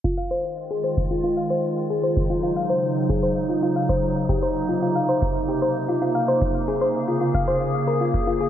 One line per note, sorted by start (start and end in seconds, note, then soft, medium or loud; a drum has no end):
0.04 1.88 D#3 medium
0.04 1.88 G#3 medium
0.04 0.15 F4 loud
0.04 1.88 F4 medium
0.04 kick loud
0.18 0.24 F5 loud
0.31 0.41 C5 loud
0.71 0.83 G#4 medium
0.84 0.90 C5 loud
0.97 kick loud
1.11 1.17 F4 medium
1.24 1.34 F4 loud
1.37 1.43 F5 loud
1.50 1.61 C5 loud
1.90 4.27 C#3 medium
1.90 4.27 F#3 medium
1.90 6.37 D#4 medium
1.90 2.03 G#4 medium
2.04 2.10 C5 loud
2.17 kick loud
2.30 2.36 F4 medium
2.43 2.54 F4 loud
2.57 2.63 F5 loud
2.70 2.80 C5 loud
3.10 3.22 G#4 medium
3.10 kick loud
3.23 3.29 C5 loud
3.49 3.56 F4 medium
3.63 3.73 F4 loud
3.76 3.82 F5 loud
3.89 4.00 C5 loud
3.89 kick loud
4.29 6.39 C3 medium
4.29 8.49 A#3 medium
4.29 4.42 G4 medium
4.29 kick loud
4.42 4.49 C5 loud
4.69 4.75 F4 medium
4.82 4.93 F4 loud
4.95 5.02 F5 loud
5.09 5.19 C5 loud
5.22 kick loud
5.49 5.61 G4 medium
5.62 5.68 C5 loud
5.88 5.95 F4 medium
6.02 6.12 F4 loud
6.15 6.21 F5 loud
6.28 6.39 C5 loud
6.42 8.49 C#3 medium
6.42 8.49 G#4 medium
6.42 kick loud
6.68 6.81 G#4 medium
6.81 6.88 C5 loud
7.08 7.14 F4 medium
7.21 7.32 F4 loud
7.35 7.41 F5 loud
7.35 kick loud
7.48 7.58 C5 loud
7.88 8.00 A#4 medium
8.01 8.11 F4 medium
8.14 kick loud
8.27 8.38 F4 medium
8.41 8.49 G#4 medium